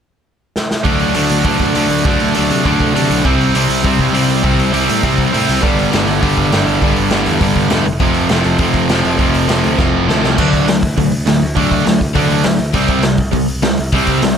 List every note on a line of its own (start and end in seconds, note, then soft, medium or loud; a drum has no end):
0.56 snare medium
0.71 snare medium
0.85 1.12 D2 medium
0.85 1.17 D3 loud
0.85 1.16 F#3 loud
0.85 1.16 A3 medium
0.85 1.15 D4 loud
0.85 kick medium
0.85 open hi-hat medium
0.99 open hi-hat soft
1.14 1.29 D2 medium
1.14 1.44 D3 medium
1.14 1.45 F#3 medium
1.14 1.45 A3 medium
1.14 1.46 D4 medium
1.14 open hi-hat medium
1.29 1.44 D2 medium
1.29 open hi-hat medium
1.44 1.58 D2 medium
1.44 1.75 D3 medium
1.44 1.75 F#3 medium
1.44 1.74 A3 loud
1.44 1.73 D4 medium
1.44 kick loud
1.44 open hi-hat medium
1.60 1.74 D2 medium
1.60 kick medium
1.60 open hi-hat soft
1.74 1.89 D2 medium
1.74 2.04 D3 medium
1.74 2.04 F#3 loud
1.74 2.05 A3 medium
1.74 2.05 D4 loud
1.74 open hi-hat medium
1.90 2.04 D2 medium
1.90 open hi-hat soft
2.05 2.18 D2 medium
2.05 2.36 D3 medium
2.05 2.35 F#3 loud
2.05 2.34 A3 medium
2.05 2.33 D4 loud
2.05 kick loud
2.05 open hi-hat medium
2.20 2.35 D2 medium
2.20 open hi-hat soft
2.35 2.50 D2 medium
2.35 2.63 D3 medium
2.35 2.64 F#3 medium
2.35 2.64 A3 medium
2.35 2.65 D4 medium
2.35 open hi-hat medium
2.50 2.64 C3 medium
2.50 open hi-hat soft
2.64 2.79 D2 medium
2.64 2.95 D3 medium
2.64 2.95 F#3 medium
2.64 2.94 A3 loud
2.64 2.94 D4 loud
2.64 kick loud
2.64 open hi-hat medium
2.80 2.94 D2 medium
2.80 kick medium
2.80 open hi-hat soft
2.95 3.09 C3 medium
2.95 3.24 D3 medium
2.95 3.24 F#3 medium
2.95 3.24 A3 medium
2.95 3.24 D4 loud
2.95 open hi-hat medium
3.11 3.23 B1 medium
3.11 open hi-hat soft
3.24 3.51 C2 medium
3.24 3.55 C3 medium
3.24 3.55 G3 loud
3.24 3.54 C4 loud
3.24 3.54 E4 medium
3.24 kick medium
3.24 open hi-hat medium
3.40 open hi-hat soft
3.54 3.68 C2 medium
3.54 3.82 C3 medium
3.54 3.83 G3 medium
3.54 3.83 C4 medium
3.54 3.83 E4 medium
3.54 open hi-hat medium
3.69 3.83 C2 loud
3.69 open hi-hat medium
3.83 3.98 C2 medium
3.83 4.15 C3 medium
3.83 4.15 G3 loud
3.83 4.14 C4 loud
3.83 4.13 E4 loud
3.83 kick loud
3.83 open hi-hat medium
3.99 4.12 C2 medium
3.99 kick medium
3.99 open hi-hat soft
4.13 4.27 C2 medium
4.13 4.42 C3 medium
4.13 4.44 G3 medium
4.13 4.43 C4 loud
4.13 4.44 E4 medium
4.13 open hi-hat medium
4.27 4.41 C2 medium
4.27 open hi-hat soft
4.43 4.57 C2 medium
4.43 4.74 C3 medium
4.43 4.75 G3 medium
4.43 4.73 C4 medium
4.43 4.72 E4 loud
4.43 kick loud
4.43 open hi-hat medium
4.58 4.72 C2 medium
4.58 open hi-hat medium
4.73 4.87 C2 medium
4.73 5.02 C3 medium
4.73 5.03 G3 medium
4.73 5.03 C4 loud
4.73 5.03 E4 loud
4.73 open hi-hat medium
4.89 5.02 A2 medium
4.89 open hi-hat soft
5.03 5.17 C2 medium
5.03 5.33 C3 medium
5.03 5.33 G3 medium
5.03 5.32 C4 medium
5.03 5.31 E4 loud
5.03 kick loud
5.03 open hi-hat medium
5.18 5.32 C2 medium
5.18 kick medium
5.18 open hi-hat soft
5.32 5.47 A2 medium
5.32 5.61 C3 medium
5.32 5.62 G3 loud
5.32 5.62 C4 loud
5.32 5.62 E4 loud
5.32 open hi-hat medium
5.49 5.64 C2 medium
5.49 open hi-hat soft
5.61 5.89 G1 medium
5.61 5.92 G2 medium
5.61 5.92 D3 loud
5.61 5.91 G3 loud
5.61 5.91 B3 loud
5.61 5.90 D4 medium
5.61 kick loud
5.61 open hi-hat medium
5.79 open hi-hat soft
5.91 6.06 G1 medium
5.91 6.20 G2 medium
5.91 6.21 D3 medium
5.91 6.21 G3 medium
5.91 6.22 B3 medium
5.91 6.22 D4 medium
5.91 snare loud
5.91 open hi-hat medium
6.07 6.21 G1 medium
6.07 open hi-hat soft
6.21 6.36 G1 medium
6.21 6.52 G2 medium
6.21 6.52 D3 medium
6.21 6.51 G3 medium
6.21 6.51 B3 medium
6.21 6.51 D4 loud
6.21 kick loud
6.21 open hi-hat medium
6.38 6.50 G1 medium
6.38 kick medium
6.38 open hi-hat soft
6.51 6.65 G1 medium
6.51 6.81 G2 medium
6.51 6.81 D3 medium
6.51 6.82 G3 medium
6.51 6.83 B3 loud
6.51 6.83 D4 loud
6.51 snare medium
6.51 open hi-hat medium
6.67 6.80 G1 medium
6.67 open hi-hat soft
6.82 6.96 G1 medium
6.82 7.12 G2 medium
6.82 7.12 D3 medium
6.82 7.12 G3 loud
6.82 7.11 B3 loud
6.82 7.10 D4 loud
6.82 kick loud
6.82 open hi-hat medium
6.96 7.10 G1 medium
6.96 open hi-hat soft
7.10 7.26 G1 medium
7.10 7.39 G2 medium
7.10 7.40 D3 medium
7.10 7.41 G3 medium
7.10 7.41 B3 loud
7.10 7.41 D4 loud
7.10 snare loud
7.10 open hi-hat medium
7.26 7.40 E2 medium
7.26 open hi-hat medium
7.41 7.55 G1 medium
7.41 7.71 G2 medium
7.41 7.71 D3 medium
7.41 7.70 G3 medium
7.41 7.69 B3 medium
7.41 7.70 D4 medium
7.41 kick loud
7.41 open hi-hat medium
7.55 7.69 G1 medium
7.55 kick medium
7.55 open hi-hat soft
7.70 7.84 E1 medium
7.70 7.86 G2 medium
7.70 7.86 D3 loud
7.70 7.86 G3 medium
7.70 7.85 B3 loud
7.70 7.85 D4 loud
7.70 snare loud
7.70 open hi-hat medium
7.85 7.99 F1 loud
7.85 open hi-hat soft
8.00 8.27 F1 medium
8.00 8.32 F2 medium
8.00 8.30 C3 loud
8.00 8.31 F3 loud
8.00 8.30 A3 loud
8.00 8.30 C4 loud
8.00 kick loud
8.00 open hi-hat medium
8.14 open hi-hat soft
8.29 8.43 F1 medium
8.29 8.57 F2 medium
8.29 8.58 C3 medium
8.29 8.58 F3 medium
8.29 8.60 A3 medium
8.29 8.60 C4 medium
8.29 snare loud
8.29 open hi-hat medium
8.44 8.58 F1 medium
8.44 open hi-hat medium
8.59 8.73 F1 medium
8.59 8.91 F2 loud
8.59 8.89 C3 loud
8.59 8.89 F3 medium
8.59 8.89 A3 medium
8.59 8.88 C4 loud
8.59 kick loud
8.59 open hi-hat medium
8.74 8.88 F1 medium
8.74 kick medium
8.74 open hi-hat soft
8.89 9.03 F1 medium
8.89 9.17 F2 medium
8.89 9.17 C3 medium
8.89 9.18 F3 loud
8.89 9.18 A3 loud
8.89 9.19 C4 loud
8.89 snare loud
8.89 open hi-hat medium
9.05 9.18 F1 medium
9.05 open hi-hat soft
9.18 9.32 F1 medium
9.18 9.49 F2 medium
9.18 9.49 C3 loud
9.18 9.48 F3 loud
9.18 9.47 A3 medium
9.18 9.47 C4 loud
9.18 kick medium
9.18 open hi-hat medium
9.34 9.48 F1 medium
9.34 open hi-hat medium
9.48 9.63 F1 medium
9.48 9.77 F2 medium
9.48 9.78 C3 medium
9.48 9.79 F3 medium
9.48 9.79 A3 medium
9.48 9.80 C4 medium
9.48 snare loud
9.48 open hi-hat medium
9.64 9.78 D2 medium
9.64 open hi-hat medium
9.78 9.92 F1 medium
9.78 10.09 F2 medium
9.78 10.08 C3 medium
9.78 10.08 F3 loud
9.78 10.08 A3 loud
9.78 10.07 C4 loud
9.78 kick loud
9.78 snare medium
9.94 10.07 F1 medium
10.08 10.22 D2 medium
10.08 10.38 F2 medium
10.08 10.37 C3 medium
10.08 10.38 F3 medium
10.08 10.38 A3 loud
10.08 10.37 C4 medium
10.08 snare medium
10.24 10.37 C2 medium
10.24 snare medium
10.38 10.67 D2 medium
10.38 10.67 D3 medium
10.38 10.67 F#3 medium
10.38 10.68 A3 medium
10.38 10.67 D4 medium
10.38 kick loud
10.38 crash loud
10.53 kick medium
10.53 open hi-hat medium
10.68 10.82 D2 medium
10.68 10.81 D3 medium
10.68 10.82 F#3 medium
10.68 10.81 A3 medium
10.68 snare loud
10.68 open hi-hat medium
10.83 10.97 D2 medium
10.83 kick medium
10.83 open hi-hat medium
10.98 11.11 D2 medium
10.98 11.11 D3 medium
10.98 11.11 F#3 medium
10.98 11.11 A3 medium
10.98 kick loud
10.98 open hi-hat medium
11.12 11.26 D2 medium
11.12 open hi-hat medium
11.26 11.41 D2 medium
11.26 11.41 D3 medium
11.26 11.41 F#3 medium
11.26 11.40 A3 medium
11.26 snare loud
11.26 open hi-hat medium
11.42 11.56 D2 medium
11.42 open hi-hat medium
11.56 11.85 D2 medium
11.56 11.83 D3 medium
11.56 11.84 F#3 loud
11.56 11.86 A3 medium
11.56 11.85 D4 loud
11.56 kick loud
11.56 open hi-hat medium
11.72 kick medium
11.72 open hi-hat medium
11.85 12.00 D2 medium
11.85 11.99 D3 medium
11.85 11.99 F#3 medium
11.85 11.99 A3 medium
11.85 snare loud
11.85 open hi-hat medium
12.01 12.15 D2 medium
12.01 kick medium
12.01 open hi-hat medium
12.14 12.29 D2 medium
12.14 12.43 D3 medium
12.14 12.44 F#3 medium
12.14 12.44 A3 medium
12.14 12.44 D4 medium
12.14 kick loud
12.14 open hi-hat medium
12.30 12.44 D2 medium
12.30 open hi-hat medium
12.44 12.59 D2 loud
12.44 12.58 D3 medium
12.44 12.58 F#3 medium
12.44 12.58 A3 medium
12.44 snare loud
12.44 open hi-hat medium
12.59 12.74 D2 medium
12.59 open hi-hat medium
12.73 13.03 C2 medium
12.73 13.03 C3 medium
12.73 13.03 G3 medium
12.73 13.04 C4 medium
12.73 kick loud
12.73 open hi-hat medium
12.88 kick medium
12.88 open hi-hat soft
13.03 13.18 C2 medium
13.03 13.18 C3 medium
13.03 13.18 G3 medium
13.03 snare loud
13.03 open hi-hat medium
13.18 13.33 C2 medium
13.18 kick medium
13.18 open hi-hat medium
13.32 13.48 C2 medium
13.32 13.46 C3 medium
13.32 13.46 G3 medium
13.32 kick loud
13.32 open hi-hat medium
13.48 13.63 C2 medium
13.48 open hi-hat soft
13.62 13.78 C2 medium
13.62 13.76 C3 medium
13.62 13.76 G3 medium
13.62 snare loud
13.62 open hi-hat medium
13.77 13.92 C2 medium
13.77 open hi-hat medium
13.92 14.21 C2 medium
13.92 14.21 C3 medium
13.92 14.21 G3 loud
13.92 14.22 C4 loud
13.92 kick loud
13.92 open hi-hat medium
14.07 kick medium
14.07 open hi-hat medium
14.22 14.37 C2 medium
14.22 14.36 C3 medium
14.22 14.36 G3 medium
14.22 snare loud
14.22 open hi-hat medium